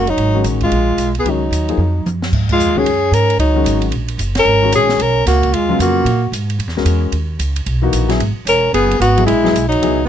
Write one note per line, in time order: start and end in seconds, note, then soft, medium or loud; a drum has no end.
0.00 0.17 F#1 medium
0.00 0.10 A#3 medium
0.00 0.11 F#4 medium
0.07 0.45 F#3 medium
0.07 0.46 D#4 medium
0.07 ride soft
0.17 0.43 G#1 medium
0.17 ride soft
0.34 0.69 D#3 medium
0.34 0.70 G#3 soft
0.34 0.69 C#4 soft
0.34 0.70 F#4 medium
0.44 0.70 A1 medium
0.44 hi-hat pedal medium
0.44 ride medium
0.61 1.13 G#3 medium
0.61 1.12 F4 medium
0.61 kick soft
0.61 ride soft
0.71 0.97 A#1 medium
0.71 ride soft
0.97 1.23 B1 medium
0.97 hi-hat pedal medium
0.97 ride medium
1.15 1.30 B3 medium
1.15 ride soft
1.19 1.32 G#4 medium
1.24 1.50 C#2 medium
1.24 1.40 D#3 soft
1.24 1.40 G#3 soft
1.24 1.40 C#4 soft
1.24 1.40 F#4 soft
1.24 ride soft
1.29 2.07 F#3 medium
1.29 2.08 D#4 medium
1.51 1.77 D#2 medium
1.51 hi-hat pedal medium
1.51 ride medium
1.69 1.78 F3 medium
1.69 1.78 A#3 soft
1.69 1.78 D#4 soft
1.69 1.78 G#4 medium
1.69 ride soft
1.77 2.04 F2 medium
1.77 mid tom soft
2.06 2.31 F#2 medium
2.06 hi-hat pedal soft
2.06 mid tom medium
2.22 snare medium
2.32 2.58 G#2 medium
2.32 kick medium
2.32 crash medium
2.49 2.79 G#3 medium
2.49 2.80 F4 medium
2.49 kick medium
2.49 crash medium
2.59 2.67 F2 medium
2.59 hi-hat pedal medium
2.67 2.76 D#2 medium
2.76 2.84 C#2 medium
2.76 2.85 D#3 medium
2.76 2.85 G#3 medium
2.76 2.86 C#4 medium
2.76 3.13 C#4 medium
2.76 2.86 F#4 medium
2.76 3.15 G#4 medium
2.76 kick medium
2.85 3.11 F#2 medium
2.85 ride medium
3.12 3.37 G#2 medium
3.12 3.39 C#4 medium
3.12 3.39 A#4 medium
3.12 hi-hat pedal soft
3.12 ride medium
3.30 ride soft
3.38 3.64 C#2 medium
3.38 3.89 F#3 medium
3.38 3.89 D#4 medium
3.38 ride medium
3.55 3.90 D#3 medium
3.55 3.91 G#3 medium
3.55 3.91 C#4 medium
3.55 3.91 F#4 medium
3.64 3.90 G#1 medium
3.64 hi-hat pedal medium
3.64 ride medium
3.82 ride soft
3.91 4.18 A#1 medium
3.91 ride soft
4.08 ride soft
4.18 4.44 F#1 medium
4.18 hi-hat pedal medium
4.18 ride medium
4.35 4.72 C#4 medium
4.35 4.72 A#4 loud
4.35 snare medium
4.35 ride medium
4.45 4.72 G#1 medium
4.62 4.97 D#3 medium
4.62 4.97 G#3 medium
4.62 4.98 C#4 medium
4.62 4.98 F#4 medium
4.72 4.99 A#1 medium
4.72 5.02 C#4 medium
4.72 5.03 G#4 loud
4.72 hi-hat pedal medium
4.72 ride medium
4.89 snare medium
4.99 5.25 B1 medium
4.99 5.26 C#4 medium
4.99 5.27 A#4 medium
4.99 ride medium
5.26 5.52 C#2 medium
5.26 5.57 A#3 medium
5.26 5.55 F#4 medium
5.26 snare soft
5.26 hi-hat pedal medium
5.26 ride medium
5.43 kick medium
5.43 ride soft
5.53 5.78 D#2 medium
5.53 5.81 G#3 medium
5.53 5.80 F4 medium
5.53 ride medium
5.69 6.04 C#3 medium
5.69 6.04 F#3 medium
5.69 6.04 B3 medium
5.69 6.05 F4 medium
5.79 6.04 F2 medium
5.79 6.30 A#3 medium
5.79 6.30 F#4 medium
5.79 hi-hat pedal medium
5.79 ride medium
6.05 6.31 A#2 medium
6.05 ride medium
6.32 6.58 G#2 medium
6.32 hi-hat pedal medium
6.32 ride medium
6.50 ride soft
6.59 6.67 F#2 medium
6.59 ride medium
6.67 6.76 E2 medium
6.67 snare soft
6.77 6.84 C#2 medium
6.77 7.12 G#3 medium
6.77 7.12 C#4 medium
6.77 7.12 F#4 medium
6.77 7.12 A#4 medium
6.77 snare soft
6.85 7.11 E2 medium
6.85 hi-hat pedal medium
6.85 ride medium
7.12 7.38 D#2 medium
7.12 ride medium
7.39 7.66 C#2 medium
7.39 hi-hat pedal medium
7.39 ride medium
7.56 ride soft
7.66 7.93 B1 medium
7.66 ride medium
7.82 8.08 E3 medium
7.82 8.08 A#3 medium
7.82 8.08 D#4 medium
7.82 8.09 F#4 medium
7.93 8.19 A#1 medium
7.93 hi-hat pedal medium
7.93 ride medium
8.09 8.19 F#3 medium
8.09 8.19 B3 medium
8.09 8.19 E4 medium
8.09 8.19 G#4 medium
8.09 snare soft
8.09 ride soft
8.20 8.35 G#1 medium
8.20 ride medium
8.36 muted upright bass stroke soft
8.45 8.72 E1 medium
8.45 8.72 C#4 medium
8.45 8.73 A#4 loud
8.45 hi-hat pedal medium
8.45 ride medium
8.73 8.99 F#1 medium
8.73 8.99 B3 medium
8.73 8.99 G#4 medium
8.73 ride medium
8.91 ride soft
8.99 9.26 G#1 loud
8.99 9.25 B3 medium
8.99 9.26 F#4 medium
8.99 hi-hat pedal medium
8.99 ride medium
9.17 9.26 F#3 medium
9.17 9.27 B3 medium
9.17 9.27 E4 medium
9.17 9.27 G#4 medium
9.17 ride soft
9.26 9.52 A#1 medium
9.26 9.67 G#3 medium
9.26 9.67 E4 medium
9.26 ride medium
9.43 9.53 F#3 medium
9.43 9.53 B3 medium
9.43 9.53 E4 medium
9.43 9.54 G#4 medium
9.43 snare soft
9.53 9.80 B1 medium
9.53 hi-hat pedal medium
9.53 ride medium
9.68 10.04 F#3 medium
9.68 10.04 D#4 medium
9.68 ride soft
9.80 10.06 C#2 medium
9.80 9.96 F#3 medium
9.80 9.96 B3 medium
9.80 9.96 E4 medium
9.80 9.97 G#4 medium
9.80 ride medium
10.05 10.08 B3 medium